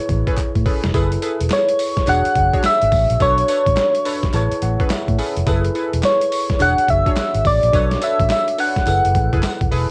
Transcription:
Already playing: tine electric piano E4 G#4 B4 C#5, soft synth lead C#5
0.09 fingered electric bass A1, kick, closed hi-hat
0.27 analog polysynth C#4 G#4 A4 B4, kick, closed hi-hat
0.37 kick, clap, closed hi-hat
0.55 fingered electric bass A2, kick, closed hi-hat
0.66 analog polysynth C#4 G#4 A4 B4, kick, open hi-hat
0.84 fingered electric bass F1, snare, closed hi-hat
0.94 fingered electric bass F#1, tine electric piano E4 G#4 A4 B4, analog polysynth E4 G#4 A4 B4, kick, closed hi-hat, tambourine
1.12 closed hi-hat
1.22 analog polysynth E4 G#4 A4 B4, closed hi-hat, tambourine
1.40 fingered electric bass E1, closed hi-hat
1.50 soft synth lead C#5, snare, clap, closed hi-hat, tambourine
1.68 closed hi-hat
1.79 open hi-hat, tambourine
1.97 kick, snare, closed hi-hat
2.07 fingered electric bass E1, analog polysynth D4 F#4 G#4 C#5, tine electric piano D4 F#4 G#4 C#5, soft synth lead F#5, clap, closed hi-hat, tambourine
2.25 muted fingered electric bass stroke, closed hi-hat
2.35 fingered electric bass F#1, kick, closed hi-hat
2.53 analog polysynth D4 F#4 G#4 C#5, kick, closed hi-hat
2.64 soft synth lead E5, snare, clap, closed hi-hat, tambourine
2.82 fingered electric bass G#1, closed hi-hat
2.92 fingered electric bass A1, kick, open hi-hat, tambourine
3.10 fingered electric bass A#1, closed hi-hat
3.20 fingered electric bass B1, tine electric piano D4 F#4 A4 C#5, analog polysynth D4 A4 B4 C#5, soft synth lead C#5, kick, closed hi-hat, tambourine
3.38 closed hi-hat
3.48 analog polysynth D4 A4 B4 C#5, closed hi-hat, tambourine
3.67 fingered electric bass A1, kick, closed hi-hat
3.77 snare, clap, closed hi-hat, tambourine
3.95 closed hi-hat
4.05 analog polysynth D4 A4 B4 C#5, tine electric piano B5, open hi-hat, tambourine
4.23 kick, snare, closed hi-hat
4.33 fingered electric bass A1, tine electric piano E4 G#4 B4 C#5 A5, clap, closed hi-hat, tambourine
4.52 closed hi-hat
4.62 fingered electric bass A1, tine electric piano F#5, closed hi-hat
4.80 analog polysynth C#4 G#4 A4 B4, kick, closed hi-hat
4.90 tine electric piano E5, snare, clap, closed hi-hat, tambourine
5.08 fingered electric bass A2, kick, closed hi-hat
5.19 analog polysynth C#4 G#4 A4 B4, open hi-hat, tambourine
5.37 fingered electric bass F1, closed hi-hat
5.46 fingered electric bass F#1, tine electric piano E4 G#4 A4 B4, analog polysynth E4 G#4 A4 B4, kick, closed hi-hat, tambourine
5.65 closed hi-hat
5.75 analog polysynth E4 G#4 A4 B4, closed hi-hat, tambourine
5.93 fingered electric bass E1, closed hi-hat
6.03 soft synth lead C#5, snare, clap, closed hi-hat, tambourine
6.21 closed hi-hat
6.32 open hi-hat, tambourine
6.50 kick, snare, closed hi-hat
6.59 fingered electric bass E1, tine electric piano D4 F#4 G#4 C#5, analog polysynth D4 F#4 G#4 C#5, soft synth lead F#5, clap, closed hi-hat, tambourine
6.78 muted fingered electric bass stroke, closed hi-hat
6.88 fingered electric bass F#1, soft synth lead E5, kick, closed hi-hat
7.06 analog polysynth D4 F#4 G#4 C#5, kick, closed hi-hat
7.17 snare, clap, closed hi-hat, tambourine
7.34 fingered electric bass G#1, closed hi-hat
7.45 fingered electric bass A1, soft synth lead D5, kick, open hi-hat, tambourine
7.63 fingered electric bass A#1, closed hi-hat
7.73 fingered electric bass B1, tine electric piano D4 F#4 A4 C#5, analog polysynth D4 A4 B4 C#5, kick, closed hi-hat, tambourine
7.91 snare, closed hi-hat
8.01 analog polysynth D4 A4 B4 C#5, soft synth lead E5, closed hi-hat, tambourine
8.19 fingered electric bass A1, kick, closed hi-hat
8.30 soft synth lead E5, snare, clap, closed hi-hat, tambourine
8.48 closed hi-hat
8.58 analog polysynth D4 A4 B4 C#5, soft synth lead F#5, open hi-hat, tambourine
8.76 kick, snare, closed hi-hat
8.86 fingered electric bass F#1, tine electric piano E4 G#4 A4 B4, clap, closed hi-hat, tambourine
9.04 fingered electric bass F#1, closed hi-hat
9.15 fingered electric bass A1, kick, closed hi-hat
9.33 fingered electric bass F#1, analog polysynth E4 G#4 A4 B4, kick, closed hi-hat
9.43 snare, clap, closed hi-hat, tambourine
9.61 fingered electric bass D#1, kick, closed hi-hat
9.71 fingered electric bass E1, analog polysynth E4 G#4 A4 B4, open hi-hat, tambourine

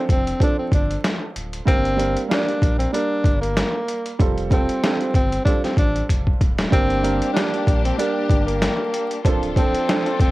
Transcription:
Already playing: grand piano F3 C4 D4 A4
0.09 sub bass F1, tenor saxophone C4, kick, closed hi-hat
0.27 closed hi-hat
0.40 grand piano F3 C4 D4 A4, tenor saxophone D4, kick, closed hi-hat
0.58 tenor saxophone C4
0.72 sub bass G1, tenor saxophone D4, kick, closed hi-hat
0.91 closed hi-hat
1.04 snare, closed hi-hat
1.36 sub bass D1, closed hi-hat
1.53 closed hi-hat
1.65 sub bass G1, grand piano G3 A#3 D4 A#4, tenor saxophone C4, kick, closed hi-hat
1.85 closed hi-hat
1.97 grand piano G3 A#3 D4 A#4, closed hi-hat
2.17 closed hi-hat
2.29 grand piano G3 A#3 D4 A#4, tenor saxophone D4, snare, closed hi-hat
2.48 closed hi-hat
2.62 sub bass A#1, kick, closed hi-hat
2.79 tenor saxophone C4, closed hi-hat
2.92 grand piano G3 A#3 D4 A#4, tenor saxophone D4, closed hi-hat
3.24 sub bass G1, kick, closed hi-hat
3.41 tenor saxophone A#3, closed hi-hat
3.57 snare, closed hi-hat
3.88 closed hi-hat
4.06 closed hi-hat
4.19 sub bass F1, grand piano G3 C4 F4 A4, kick, closed hi-hat
4.38 closed hi-hat
4.50 grand piano G3 C4 F4 A4, tenor saxophone C4, kick, closed hi-hat
4.69 closed hi-hat
4.83 grand piano G3 C4 F4 A4, snare, closed hi-hat
5.01 closed hi-hat
5.14 sub bass G1, tenor saxophone C4, kick, closed hi-hat
5.32 closed hi-hat
5.45 grand piano G3 C4 F4 A4, tenor saxophone D4, kick, closed hi-hat
5.64 tenor saxophone C4, snare, closed hi-hat
5.77 sub bass A1, tenor saxophone D4, kick, closed hi-hat
5.96 closed hi-hat
6.09 sub bass F1, kick, closed hi-hat
6.27 kick
6.41 sub bass D1, kick, closed hi-hat
6.58 snare, closed hi-hat
6.70 sub bass G1, grand piano G3 A#3 D4 A#4, string section A#3 D4 G4, tenor saxophone C4, kick, closed hi-hat
6.90 closed hi-hat
7.02 grand piano G3 A#3 D4 A#4, closed hi-hat
7.22 closed hi-hat
7.33 grand piano G3 A#3 D4 A#4, tenor saxophone D4, snare, closed hi-hat
7.54 closed hi-hat
7.67 sub bass A#1, kick, closed hi-hat
7.84 tenor saxophone C4, closed hi-hat
7.98 grand piano G3 A#3 D4 A#4, tenor saxophone D4, closed hi-hat
8.29 sub bass G1, kick, closed hi-hat
8.46 tenor saxophone A#3, closed hi-hat
8.62 snare, closed hi-hat
8.94 closed hi-hat
9.11 closed hi-hat
9.23 sub bass D1, grand piano F3 C4 D4, string section D4 F4 A4, kick, closed hi-hat
9.27 grand piano A4
9.43 closed hi-hat
9.56 grand piano F3 C4 D4 A4, tenor saxophone C4, kick, closed hi-hat
9.74 closed hi-hat
9.88 grand piano F3 C4 D4 A4, snare, closed hi-hat
10.06 closed hi-hat
10.20 sub bass F1, tenor saxophone C4, kick, closed hi-hat

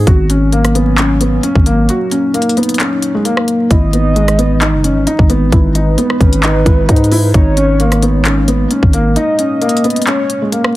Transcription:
0.07 808-style bass G#1, analog synth pad F#3 A#3 C#4, felt piano F#4, kick, closed hi-hat
0.30 felt piano C#4, closed hi-hat
0.52 felt piano A#3, closed hi-hat
0.65 cross-stick, closed hi-hat
0.75 felt piano B3, closed hi-hat
0.98 felt piano C#4, clap, closed hi-hat
1.21 felt piano B3, closed hi-hat
1.43 felt piano C#4, closed hi-hat
1.55 808-style bass G#1, kick
1.66 felt piano A#3, closed hi-hat
1.89 analog synth pad D#4, felt piano F#4, closed hi-hat
2.11 felt piano C#4, closed hi-hat
2.34 felt piano A#3, closed hi-hat
2.42 closed hi-hat
2.49 closed hi-hat
2.57 felt piano B3, closed hi-hat
2.63 closed hi-hat
2.69 closed hi-hat
2.74 closed hi-hat
2.80 felt piano C#4, clap, closed hi-hat
3.02 closed hi-hat
3.15 felt piano G#3
3.25 felt piano A#3, closed hi-hat
3.37 cross-stick
3.48 closed hi-hat
3.70 808-style bass G#1, analog synth pad E3 G#3 D#4, felt piano E4, soft synth lead D#5, kick, closed hi-hat
3.93 felt piano B3, closed hi-hat
4.16 felt piano G#3, closed hi-hat
4.28 cross-stick, closed hi-hat
4.38 felt piano B3, closed hi-hat
4.61 felt piano D#4, clap, closed hi-hat
4.74 808-style bass F#1
4.84 felt piano C#4, closed hi-hat
4.90 808-style bass G#1
5.07 felt piano D#4, closed hi-hat
5.19 808-style bass G#1, kick
5.30 felt piano B3, closed hi-hat
5.52 808-style bass G#1, felt piano E4, soft synth lead B4, kick, closed hi-hat
5.75 felt piano D#4, closed hi-hat
5.98 felt piano B3, closed hi-hat
6.10 cross-stick
6.21 808-style bass G#1, felt piano C#4, kick, closed hi-hat
6.33 closed hi-hat
6.43 felt piano D#4, clap, closed hi-hat
6.65 808-style bass G#1, felt piano E4, kick, closed hi-hat
6.89 808-style bass G#2, felt piano D#4, kick, closed hi-hat
6.96 closed hi-hat
7.04 closed hi-hat
7.12 felt piano E4, open hi-hat
7.34 808-style bass G#1, analog synth pad A#3, felt piano D#4, soft synth lead C#5, kick, closed hi-hat
7.57 felt piano C#4, closed hi-hat
7.80 felt piano A#3, closed hi-hat
7.92 cross-stick, closed hi-hat
8.02 felt piano B3, closed hi-hat
8.25 felt piano C#4, clap, closed hi-hat
8.48 felt piano B3, closed hi-hat
8.71 felt piano C#4, closed hi-hat
8.83 808-style bass G#1, kick
8.93 felt piano A#3, closed hi-hat
9.16 analog synth pad C#4, felt piano D#4, soft synth lead D#5, closed hi-hat
9.39 felt piano C#4, closed hi-hat
9.61 felt piano A#3, closed hi-hat
9.69 closed hi-hat
9.77 closed hi-hat
9.84 felt piano B3, closed hi-hat
9.90 closed hi-hat
9.96 closed hi-hat
10.02 closed hi-hat
10.07 felt piano C#4, soft synth lead C#5, clap, closed hi-hat
10.30 closed hi-hat
10.42 felt piano G#3
10.52 felt piano A#3, closed hi-hat
10.64 cross-stick

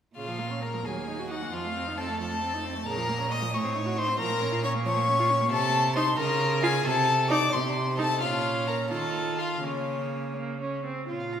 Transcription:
0.16 cello A#2, viola C#3, violin F4 F5
0.28 viola F3
0.39 viola A#3
0.51 viola C#4
0.62 viola A#3, violin A#4 A#5
0.74 viola F3
0.85 cello D#2, viola F#3, violin G#4 G#5
0.96 viola A#3
1.08 viola D#4
1.19 viola F#4
1.30 viola D#4, violin F#4 F#5
1.42 viola A#3
1.52 cello F2, viola F3, violin F4 F5
1.65 viola A3
1.76 viola C4
1.87 viola D#4
1.97 viola C4, violin A4 A5
2.09 viola A3
2.19 viola F3, violin A4 A5
2.31 viola A3
2.43 viola C4
2.54 viola D#4
2.64 viola C4
2.76 viola A3
2.86 cello A#2, viola C#3, violin A#4 A#5
2.97 viola F3
3.09 viola A#3
3.20 viola C#4
3.30 viola A#3, violin D#5 D#6
3.42 viola F3
3.53 cello A2, viola A3, violin C#5 C#6
3.64 viola C4
3.76 viola D#4
3.86 viola F#4
3.97 viola D#4, violin C5 C6
4.08 viola C4
4.19 cello A#2, viola F3, violin A#4 A#5
4.30 viola A#3
4.41 viola C#4
4.52 viola F4
4.63 viola C#4, violin C#5 C#6
4.75 viola A#3
4.85 viola F3, violin C#5 C#6
4.97 viola A#3
5.08 viola C#4
5.20 viola F4
5.30 viola C#4
5.41 viola A#3
5.51 cello C3, violin A4 A5
5.95 viola D#4, violin C5 C6
6.17 cello C#3, violin A#4 A#5
6.62 viola F4, violin G#4 G#5
6.85 cello C3, violin A4 A5
7.30 viola D#4, violin D5 D6
7.52 cello C3, violin C5 C6
7.98 viola D#4, violin A4 A5
8.21 cello A#2, viola C#4, violin F4 F5
8.67 violin A#4 A#5
8.90 cello D#3, viola F4, violin A4 A5
9.38 violin F4 F5
9.63 cello C#3, viola A#3, violin C#4 C#5
10.36 viola A#3
10.61 viola C#4
10.85 viola C4
11.09 cello A#2, viola F4, violin C#5
11.20 violin F5
11.32 violin A#5

